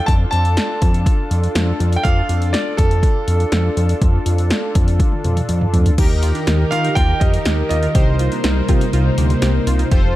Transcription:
Already playing: D4 F4 A4
0.06 F2 A5, kick, closed hi-hat
0.31 F2 A5, closed hi-hat
0.45 closed hi-hat
0.57 snare, closed hi-hat
0.82 F2, kick, closed hi-hat
0.94 closed hi-hat
1.06 kick, closed hi-hat
1.31 F2, closed hi-hat
1.44 closed hi-hat
1.55 F2, snare, closed hi-hat
1.80 F2, closed hi-hat
1.93 G5, closed hi-hat
2.03 F2 D4 F4 A4 F5, kick, closed hi-hat
2.29 F2, closed hi-hat
2.42 closed hi-hat
2.53 D5, snare, closed hi-hat
2.77 F2 A4, kick, closed hi-hat
2.91 closed hi-hat
3.03 kick, closed hi-hat
3.28 F2, closed hi-hat
3.40 closed hi-hat
3.52 F2, snare, closed hi-hat
3.77 F2, closed hi-hat
3.89 closed hi-hat
4.02 F2, kick, closed hi-hat
4.26 F2, closed hi-hat
4.38 closed hi-hat
4.50 snare, closed hi-hat
4.75 F2, kick, closed hi-hat
4.88 closed hi-hat
5.00 kick, closed hi-hat, high tom
5.12 high tom
5.24 F2, closed hi-hat, mid tom
5.37 closed hi-hat, mid tom
5.49 F2, closed hi-hat
5.61 mid tom
5.74 F2, closed hi-hat, floor tom
5.86 closed hi-hat, floor tom
5.98 D#2 D#3 D#4 G4 A#4, kick, closed hi-hat, crash
6.23 F4, closed hi-hat
6.35 D4, closed hi-hat
6.47 D#2 D#4, snare, closed hi-hat
6.71 D#3 F4 F5, closed hi-hat
6.85 D#4, closed hi-hat
6.95 D#2 F4 G5, kick, closed hi-hat
7.20 F2 G4 D#5, kick, closed hi-hat
7.34 closed hi-hat
7.45 D#2 G4, snare, closed hi-hat
7.69 D#2 F4 D#5, closed hi-hat
7.83 F4, closed hi-hat
7.95 C2 C3 G3 A#3 D#4 G4 A#4 C5, kick, closed hi-hat
8.19 F4, closed hi-hat
8.32 D4, closed hi-hat
8.44 C2 D#4, snare, closed hi-hat
8.69 C3 F4, kick, closed hi-hat
8.81 D#4, closed hi-hat
8.93 C2 F4, closed hi-hat
9.18 D2 G4, closed hi-hat
9.30 closed hi-hat
9.42 C2 G4, snare, closed hi-hat
9.67 C2 F4, closed hi-hat
9.79 F4, closed hi-hat
9.91 F1 F3 A3 C4 F4 G4 A4 C5, kick, closed hi-hat

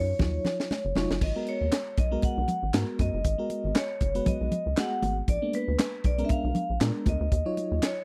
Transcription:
Already playing: F#2 C#5
0.19 D#2 F#3 D#4 F4 C#5, kick, snare, muted conga, low conga
0.45 snare, low conga
0.60 snare
0.71 snare, high conga
0.85 F#1
0.95 F1 F#3 D#4 F4 C#5, snare, high conga
1.10 F#1, snare
1.21 G#1 D#5, kick, crash
1.35 G#3 B3 F#4 A#4
1.47 C#5, closed hi-hat
1.61 D#2
1.72 snare, clap, closed hi-hat, high conga
1.97 B1 D#5, kick, closed hi-hat, muted conga
2.11 G#3 B3 F#4 A#4
2.22 F#5, kick, closed hi-hat, muted conga
2.37 B1
2.48 closed hi-hat, low conga
2.63 G#1
2.74 G#2 G#3 B3 F#4 A#4, snare, clap, closed hi-hat, high conga
2.99 F#2 D#5, kick, closed hi-hat, high conga
3.14 F#1
3.24 G#1, kick, closed hi-hat
3.38 G#3 B3 F#4 A#4
3.50 closed hi-hat, muted conga
3.64 G#1
3.75 C#5, snare, clap, closed hi-hat, high conga
4.01 F#1, kick, closed hi-hat, muted conga
4.15 G#3 B3 F#4 B4, closed hi-hat
4.26 D#5, kick, closed hi-hat, muted conga, low conga
4.41 B1
4.52 closed hi-hat, low conga
4.66 C#2
4.77 G#3 B3 F#4 G#4 F#5, snare, clap, closed hi-hat, high conga
5.03 G#1, closed hi-hat, high conga
5.28 A#1 D5, kick, closed hi-hat
5.42 G#3 A#3 B3 D4
5.53 B4, closed hi-hat, muted conga
5.68 D2
5.79 snare, clap, closed hi-hat, high conga
6.04 B1 D5, kick, closed hi-hat, muted conga
6.18 G#3 B3 C#4 A#4, closed hi-hat
6.25 D4 E5
6.29 F5, kick, closed hi-hat, muted conga
6.44 B1
6.55 closed hi-hat, low conga
6.70 A#1
6.80 A#2 G#3 B3 D4 A#4, snare, clap, closed hi-hat, high conga
7.06 D2 D#5, kick, closed hi-hat, high conga
7.20 D2
7.32 D#2, kick, closed hi-hat
7.45 F#3 D#4 F4 C#5
7.57 closed hi-hat, muted conga
7.71 D#2
7.82 C#5, snare, clap, closed hi-hat, high conga

